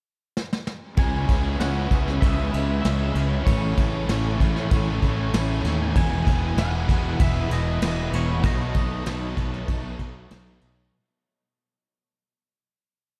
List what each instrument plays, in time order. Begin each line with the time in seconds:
0.37 snare
0.53 snare
0.67 snare
0.97 fingered electric bass C#2, overdriven electric guitar C#3 G#3 C#4 E4, string machine C#4 B4 E5, clean electric guitar G#5, kick, ride
1.28 fingered electric bass C#2, overdriven electric guitar G#3 C#4 E4, kick, ride
1.58 fingered electric bass C#2, overdriven electric guitar C#3 G#3 C#4 E4, clean electric guitar F#5, snare, ride
1.90 fingered electric bass C#2, overdriven electric guitar G#3 C#4 E4, kick, ride
2.08 snare
2.21 fingered electric bass C#2, overdriven electric guitar C#3 G#3 C#4, clean electric guitar E5, kick, ride
2.26 overdriven electric guitar E4
2.54 fingered electric bass C#2, overdriven electric guitar G#3 C#4 E4, ride
2.82 fingered electric bass C#2, overdriven electric guitar C#3 G#3, clean electric guitar E5, snare, ride
2.87 overdriven electric guitar C#4 E4
3.15 fingered electric bass C#2, overdriven electric guitar G#3 C#4 E4, ride
3.45 fingered electric bass A1, overdriven electric guitar A2 E3 A3, string machine A4 G#5, clean electric guitar C#5, kick, ride
3.50 overdriven electric guitar C#4 E4
3.76 fingered electric bass A1, distorted electric guitar E3 A3, overdriven electric guitar C#4 E4, kick, ride
3.81 overdriven electric guitar A3
4.08 fingered electric bass A1, distorted electric guitar A2, overdriven electric guitar E3 A3 C#4 E4, snare, ride
4.39 fingered electric bass A1, distorted electric guitar E3, overdriven electric guitar A3 C#4 E4, kick, ride
4.56 snare
4.71 fingered electric bass A1, overdriven electric guitar A2 E3 A3 C#4 E4, kick, ride
5.02 fingered electric bass A1, overdriven electric guitar C#4 E4, kick, ride
5.07 overdriven electric guitar A3
5.33 fingered electric bass A1, distorted electric guitar A2, overdriven electric guitar E3 A3 C#4, snare, ride
5.37 overdriven electric guitar E4
5.64 fingered electric bass D#2, distorted electric guitar E3 A3, overdriven electric guitar C#4 E4, snare, ride
5.68 overdriven electric guitar A3
5.95 fingered electric bass E1, distorted electric guitar E2 B2, overdriven electric guitar E3 G#3, string machine E4 B4, clean electric guitar G#5, kick, ride
5.99 overdriven electric guitar B3 E4
6.25 fingered electric bass E1, distorted electric guitar B2 E3, overdriven electric guitar B3 E4, kick, ride
6.30 overdriven electric guitar G#3
6.57 fingered electric bass E1, distorted electric guitar E2 B2, overdriven electric guitar E3 G#3, clean electric guitar F#5, snare, ride
6.61 overdriven electric guitar B3 E4
6.87 fingered electric bass E1, distorted electric guitar B2 E3, overdriven electric guitar B3 E4, kick, ride
6.92 overdriven electric guitar G#3
7.20 fingered electric bass E1, overdriven electric guitar E3 G#3 B3, clean electric guitar E5, kick, ride
7.24 overdriven electric guitar E4
7.51 fingered electric bass E1, overdriven electric guitar G#3 B3 E4, clean electric guitar D#5, ride
7.81 fingered electric bass E1, distorted electric guitar E2 B2, overdriven electric guitar E3 G#3 B3, snare, ride
7.86 overdriven electric guitar E4
8.12 fingered electric bass E1, distorted electric guitar B2 E3, overdriven electric guitar G#3 B3 E4, clean electric guitar C#5, snare, ride
8.43 fingered electric bass B1, overdriven electric guitar B2 F#3 A3 D#4, distorted electric guitar B3, string machine D#4 B4 A5, clean electric guitar D#5, kick, ride
8.74 fingered electric bass B1, overdriven electric guitar A3 D#4, distorted electric guitar B3, kick, ride
8.79 overdriven electric guitar F#3
9.06 fingered electric bass B1, overdriven electric guitar B2 F#3 A3, distorted electric guitar B3, snare, ride
9.10 overdriven electric guitar D#4
9.37 fingered electric bass B1, overdriven electric guitar A3 D#4, distorted electric guitar B3, kick, ride
9.41 overdriven electric guitar F#3
9.54 snare
9.68 fingered electric bass B1, overdriven electric guitar B2 F#3 A3, kick, ride
9.72 overdriven electric guitar D#4
9.99 fingered electric bass B1, overdriven electric guitar F#3 A3 D#4, kick, ride
10.30 fingered electric bass B1, overdriven electric guitar B2 F#3 A3 D#4, distorted electric guitar B3, snare, ride
10.61 fingered electric bass B1, overdriven electric guitar A3 D#4, distorted electric guitar B3, ride
10.66 overdriven electric guitar F#3